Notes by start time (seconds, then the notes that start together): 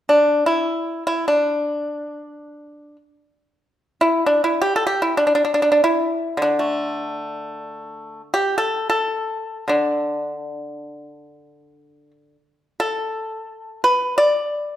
0.09 D4
0.46 E4
1.07 E4
1.28 D4
4.01 E4
4.26 D4
4.44 E4
4.62 G4
4.76 A4
4.87 G4
5.02 E4
5.17 D4
5.27 D4
5.35 D4
5.45 D4
5.54 D4
5.62 D4
5.72 D4
5.84 E4
6.37 D3
6.42 D4
6.59 A3
8.34 G4
8.58 A4
8.90 A4
9.68 D3 D4
12.80 A4
13.84 B4
14.18 D5